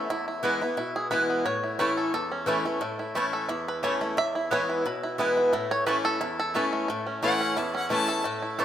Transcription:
Already playing: steel-string acoustic guitar C#4
0.10 steel-string acoustic guitar E2, five-string banjo E4
0.28 five-string banjo E4
0.43 steel-string acoustic guitar E3 G#3 B3 E4, mandolin B3 E4 B4 G#5, five-string banjo B3
0.61 steel-string acoustic guitar B3 E4, five-string banjo E4
0.77 steel-string acoustic guitar B2, five-string banjo E4
0.96 five-string banjo G#4
1.11 steel-string acoustic guitar E3 G#3 B3 E4, mandolin B3 E4 B4 G#5, five-string banjo B4
1.30 five-string banjo B3
1.45 steel-string acoustic guitar A2, five-string banjo C#5
1.63 five-string banjo E4
1.79 steel-string acoustic guitar E3 A3 C#4 E4, mandolin A3 E4 C#5 A5, five-string banjo B4
1.97 five-string banjo A4
2.14 steel-string acoustic guitar E2, five-string banjo A4
2.32 five-string banjo C#4
2.46 steel-string acoustic guitar E3 A3 C#4 E4, mandolin A3 E4 C#5 A5, five-string banjo A4
2.65 five-string banjo A3, steel-string acoustic guitar C#4 E4
2.81 steel-string acoustic guitar A2, five-string banjo A3
2.99 five-string banjo E4
3.15 steel-string acoustic guitar E3 A3 C#4 E4, mandolin A3 E4 C#5 A5, five-string banjo A3
3.33 five-string banjo A4
3.49 steel-string acoustic guitar E2, five-string banjo E4
3.68 five-string banjo B4
3.83 steel-string acoustic guitar E3 A3 C#4 E4, mandolin A3 E4 C#5 A5, five-string banjo C#5
4.01 five-string banjo A3, steel-string acoustic guitar C#4 E4
4.17 steel-string acoustic guitar E2, five-string banjo E5
4.35 five-string banjo E4
4.51 steel-string acoustic guitar E3 G#3 B3 E4, mandolin B3 E4 B4 G#5, five-string banjo C#5
4.70 five-string banjo E4
4.86 steel-string acoustic guitar B2, five-string banjo B4
5.03 five-string banjo E4
5.18 steel-string acoustic guitar E3 G#3 B3 E4, mandolin B3 E4 B4 G#5, five-string banjo E4
5.37 five-string banjo E4
5.53 steel-string acoustic guitar A2, five-string banjo A3
5.71 five-string banjo C#5
5.86 steel-string acoustic guitar E3 A3 C#4 E4, mandolin A3 E4 C#5 A5, five-string banjo B4
6.04 steel-string acoustic guitar C#4 E4, five-string banjo A4
6.21 steel-string acoustic guitar E2, five-string banjo E4
6.40 five-string banjo A4
6.54 steel-string acoustic guitar E3 A3 C#4 E4, mandolin A3 E4 C#5 A5, five-string banjo B4
6.73 five-string banjo A3
6.88 steel-string acoustic guitar A2, five-string banjo A3
7.07 five-string banjo C#4
7.22 steel-string acoustic guitar E3 A3 C#4 E4, five-string banjo A3, mandolin A3 E4 C#5 A5, fiddle F#5
7.41 five-string banjo C#4
7.57 steel-string acoustic guitar E2, five-string banjo E4, fiddle A5
7.75 five-string banjo C#4, fiddle F#5
7.90 steel-string acoustic guitar E3 A3 C#4 E4, five-string banjo A3, mandolin A3 E4 C#5 A5, fiddle A5
8.08 steel-string acoustic guitar C#4 E4, five-string banjo A4
8.24 steel-string acoustic guitar A2, five-string banjo A3
8.42 five-string banjo E4
8.58 steel-string acoustic guitar E3 A3 C#4 E4, mandolin A3 E4 C#5 A5, five-string banjo A4

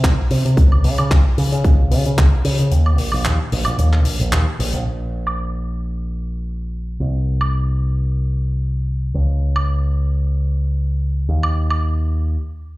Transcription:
0.04 picked electric bass C2, kick, clap, closed hi-hat
0.30 picked electric bass C3, open hi-hat
0.45 picked electric bass C3, closed hi-hat
0.57 picked electric bass C#2, kick, closed hi-hat
0.72 high woodblock
0.84 picked electric bass C#3, open hi-hat
0.98 picked electric bass C#3, closed hi-hat, high woodblock
1.11 picked electric bass C#2, kick, clap, closed hi-hat
1.38 picked electric bass C#3, open hi-hat
1.52 picked electric bass C#3, closed hi-hat
1.64 picked electric bass C#2, kick, closed hi-hat
1.91 picked electric bass C#3, open hi-hat
2.06 picked electric bass C#3, closed hi-hat
2.18 picked electric bass C#2, kick, clap, closed hi-hat
2.45 picked electric bass C#3, open hi-hat
2.58 picked electric bass C#3, closed hi-hat
2.71 picked electric bass D#2, closed hi-hat
2.86 high woodblock
2.98 picked electric bass A#1, open hi-hat
3.12 picked electric bass A#1, open hi-hat, high woodblock
3.25 picked electric bass D#2, clap, closed hi-hat
3.52 picked electric bass A#1, open hi-hat
3.65 picked electric bass A#1, closed hi-hat, high woodblock
3.78 picked electric bass D#2, closed hi-hat
3.93 clap
4.05 picked electric bass A#1, open hi-hat
4.20 picked electric bass A#1, closed hi-hat
4.32 picked electric bass D#2, clap, closed hi-hat
4.59 picked electric bass A#1, open hi-hat
4.72 picked electric bass A#1, closed hi-hat
4.86 picked electric bass A#1
5.27 high woodblock
7.00 picked electric bass C2
7.41 high woodblock
9.14 picked electric bass C#2
9.56 high woodblock
11.29 picked electric bass D#2
11.43 high woodblock
11.71 high woodblock

